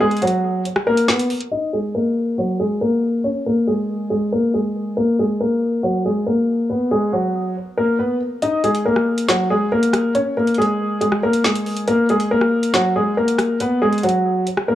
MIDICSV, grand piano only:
0, 0, Header, 1, 2, 480
1, 0, Start_track
1, 0, Key_signature, -6, "minor"
1, 0, Tempo, 431655
1, 1685, Time_signature, 4, 2, 24, 8
1, 16402, End_track
2, 0, Start_track
2, 0, Title_t, "Grand piano"
2, 0, Program_c, 0, 0
2, 6, Note_on_c, 0, 68, 93
2, 15, Note_on_c, 0, 56, 76
2, 204, Note_off_c, 0, 68, 0
2, 210, Note_off_c, 0, 56, 0
2, 245, Note_on_c, 0, 66, 81
2, 253, Note_on_c, 0, 54, 62
2, 696, Note_off_c, 0, 66, 0
2, 701, Note_off_c, 0, 54, 0
2, 965, Note_on_c, 0, 70, 90
2, 974, Note_on_c, 0, 58, 62
2, 1164, Note_off_c, 0, 70, 0
2, 1169, Note_off_c, 0, 58, 0
2, 1204, Note_on_c, 0, 71, 82
2, 1213, Note_on_c, 0, 59, 66
2, 1403, Note_off_c, 0, 71, 0
2, 1408, Note_off_c, 0, 59, 0
2, 1684, Note_on_c, 0, 75, 83
2, 1693, Note_on_c, 0, 63, 64
2, 1883, Note_off_c, 0, 75, 0
2, 1889, Note_off_c, 0, 63, 0
2, 1925, Note_on_c, 0, 68, 70
2, 1934, Note_on_c, 0, 56, 53
2, 2124, Note_off_c, 0, 68, 0
2, 2129, Note_off_c, 0, 56, 0
2, 2164, Note_on_c, 0, 70, 76
2, 2173, Note_on_c, 0, 58, 62
2, 2616, Note_off_c, 0, 70, 0
2, 2621, Note_off_c, 0, 58, 0
2, 2646, Note_on_c, 0, 66, 77
2, 2654, Note_on_c, 0, 54, 59
2, 2844, Note_off_c, 0, 66, 0
2, 2849, Note_off_c, 0, 54, 0
2, 2886, Note_on_c, 0, 68, 75
2, 2896, Note_on_c, 0, 56, 60
2, 3085, Note_off_c, 0, 68, 0
2, 3090, Note_off_c, 0, 56, 0
2, 3127, Note_on_c, 0, 70, 81
2, 3136, Note_on_c, 0, 58, 69
2, 3577, Note_off_c, 0, 70, 0
2, 3582, Note_off_c, 0, 58, 0
2, 3604, Note_on_c, 0, 73, 78
2, 3613, Note_on_c, 0, 61, 62
2, 3803, Note_off_c, 0, 73, 0
2, 3808, Note_off_c, 0, 61, 0
2, 3851, Note_on_c, 0, 70, 78
2, 3860, Note_on_c, 0, 58, 62
2, 4048, Note_off_c, 0, 70, 0
2, 4053, Note_off_c, 0, 58, 0
2, 4086, Note_on_c, 0, 68, 78
2, 4095, Note_on_c, 0, 56, 59
2, 4537, Note_off_c, 0, 68, 0
2, 4541, Note_off_c, 0, 56, 0
2, 4561, Note_on_c, 0, 68, 73
2, 4570, Note_on_c, 0, 56, 62
2, 4762, Note_off_c, 0, 68, 0
2, 4767, Note_off_c, 0, 56, 0
2, 4809, Note_on_c, 0, 70, 85
2, 4818, Note_on_c, 0, 58, 63
2, 5006, Note_off_c, 0, 70, 0
2, 5011, Note_off_c, 0, 58, 0
2, 5048, Note_on_c, 0, 68, 69
2, 5057, Note_on_c, 0, 56, 55
2, 5498, Note_off_c, 0, 68, 0
2, 5502, Note_off_c, 0, 56, 0
2, 5525, Note_on_c, 0, 70, 89
2, 5534, Note_on_c, 0, 58, 74
2, 5724, Note_off_c, 0, 70, 0
2, 5729, Note_off_c, 0, 58, 0
2, 5774, Note_on_c, 0, 68, 78
2, 5783, Note_on_c, 0, 56, 63
2, 5969, Note_off_c, 0, 68, 0
2, 5974, Note_off_c, 0, 56, 0
2, 6011, Note_on_c, 0, 70, 89
2, 6020, Note_on_c, 0, 58, 63
2, 6459, Note_off_c, 0, 70, 0
2, 6464, Note_off_c, 0, 58, 0
2, 6485, Note_on_c, 0, 66, 90
2, 6493, Note_on_c, 0, 54, 67
2, 6684, Note_off_c, 0, 66, 0
2, 6689, Note_off_c, 0, 54, 0
2, 6732, Note_on_c, 0, 68, 79
2, 6741, Note_on_c, 0, 56, 64
2, 6928, Note_off_c, 0, 68, 0
2, 6934, Note_off_c, 0, 56, 0
2, 6968, Note_on_c, 0, 70, 83
2, 6977, Note_on_c, 0, 58, 66
2, 7418, Note_off_c, 0, 70, 0
2, 7422, Note_off_c, 0, 58, 0
2, 7448, Note_on_c, 0, 71, 91
2, 7456, Note_on_c, 0, 59, 70
2, 7645, Note_off_c, 0, 71, 0
2, 7651, Note_off_c, 0, 59, 0
2, 7687, Note_on_c, 0, 68, 88
2, 7695, Note_on_c, 0, 56, 75
2, 7885, Note_off_c, 0, 68, 0
2, 7890, Note_off_c, 0, 56, 0
2, 7925, Note_on_c, 0, 66, 76
2, 7933, Note_on_c, 0, 54, 58
2, 8376, Note_off_c, 0, 66, 0
2, 8381, Note_off_c, 0, 54, 0
2, 8646, Note_on_c, 0, 70, 85
2, 8655, Note_on_c, 0, 58, 60
2, 8845, Note_off_c, 0, 70, 0
2, 8850, Note_off_c, 0, 58, 0
2, 8883, Note_on_c, 0, 71, 79
2, 8892, Note_on_c, 0, 59, 61
2, 9083, Note_off_c, 0, 71, 0
2, 9088, Note_off_c, 0, 59, 0
2, 9365, Note_on_c, 0, 75, 84
2, 9373, Note_on_c, 0, 63, 68
2, 9564, Note_off_c, 0, 75, 0
2, 9569, Note_off_c, 0, 63, 0
2, 9606, Note_on_c, 0, 68, 77
2, 9615, Note_on_c, 0, 56, 57
2, 9804, Note_off_c, 0, 68, 0
2, 9810, Note_off_c, 0, 56, 0
2, 9846, Note_on_c, 0, 70, 78
2, 9854, Note_on_c, 0, 58, 66
2, 10297, Note_off_c, 0, 70, 0
2, 10301, Note_off_c, 0, 58, 0
2, 10326, Note_on_c, 0, 66, 78
2, 10335, Note_on_c, 0, 54, 64
2, 10525, Note_off_c, 0, 66, 0
2, 10530, Note_off_c, 0, 54, 0
2, 10568, Note_on_c, 0, 68, 80
2, 10577, Note_on_c, 0, 56, 62
2, 10765, Note_off_c, 0, 68, 0
2, 10771, Note_off_c, 0, 56, 0
2, 10807, Note_on_c, 0, 70, 88
2, 10816, Note_on_c, 0, 58, 72
2, 11257, Note_off_c, 0, 70, 0
2, 11262, Note_off_c, 0, 58, 0
2, 11285, Note_on_c, 0, 73, 79
2, 11293, Note_on_c, 0, 61, 67
2, 11484, Note_off_c, 0, 73, 0
2, 11489, Note_off_c, 0, 61, 0
2, 11532, Note_on_c, 0, 70, 82
2, 11541, Note_on_c, 0, 58, 68
2, 11728, Note_off_c, 0, 70, 0
2, 11733, Note_off_c, 0, 58, 0
2, 11767, Note_on_c, 0, 68, 84
2, 11775, Note_on_c, 0, 56, 62
2, 12217, Note_off_c, 0, 68, 0
2, 12222, Note_off_c, 0, 56, 0
2, 12241, Note_on_c, 0, 68, 73
2, 12250, Note_on_c, 0, 56, 63
2, 12442, Note_off_c, 0, 68, 0
2, 12447, Note_off_c, 0, 56, 0
2, 12491, Note_on_c, 0, 70, 87
2, 12499, Note_on_c, 0, 58, 67
2, 12687, Note_off_c, 0, 70, 0
2, 12692, Note_off_c, 0, 58, 0
2, 12728, Note_on_c, 0, 68, 70
2, 12737, Note_on_c, 0, 56, 56
2, 13178, Note_off_c, 0, 68, 0
2, 13182, Note_off_c, 0, 56, 0
2, 13206, Note_on_c, 0, 70, 91
2, 13216, Note_on_c, 0, 58, 75
2, 13405, Note_off_c, 0, 70, 0
2, 13410, Note_off_c, 0, 58, 0
2, 13454, Note_on_c, 0, 68, 82
2, 13463, Note_on_c, 0, 56, 67
2, 13649, Note_off_c, 0, 68, 0
2, 13655, Note_off_c, 0, 56, 0
2, 13691, Note_on_c, 0, 70, 88
2, 13700, Note_on_c, 0, 58, 65
2, 14139, Note_off_c, 0, 70, 0
2, 14144, Note_off_c, 0, 58, 0
2, 14165, Note_on_c, 0, 66, 96
2, 14173, Note_on_c, 0, 54, 72
2, 14364, Note_off_c, 0, 66, 0
2, 14369, Note_off_c, 0, 54, 0
2, 14411, Note_on_c, 0, 68, 80
2, 14421, Note_on_c, 0, 56, 67
2, 14607, Note_off_c, 0, 68, 0
2, 14613, Note_off_c, 0, 56, 0
2, 14648, Note_on_c, 0, 70, 85
2, 14657, Note_on_c, 0, 58, 69
2, 15098, Note_off_c, 0, 70, 0
2, 15103, Note_off_c, 0, 58, 0
2, 15127, Note_on_c, 0, 71, 92
2, 15136, Note_on_c, 0, 59, 73
2, 15325, Note_off_c, 0, 71, 0
2, 15330, Note_off_c, 0, 59, 0
2, 15364, Note_on_c, 0, 68, 92
2, 15373, Note_on_c, 0, 56, 76
2, 15564, Note_off_c, 0, 68, 0
2, 15569, Note_off_c, 0, 56, 0
2, 15604, Note_on_c, 0, 66, 81
2, 15613, Note_on_c, 0, 54, 63
2, 16055, Note_off_c, 0, 66, 0
2, 16060, Note_off_c, 0, 54, 0
2, 16326, Note_on_c, 0, 70, 85
2, 16335, Note_on_c, 0, 58, 62
2, 16402, Note_off_c, 0, 58, 0
2, 16402, Note_off_c, 0, 70, 0
2, 16402, End_track
0, 0, End_of_file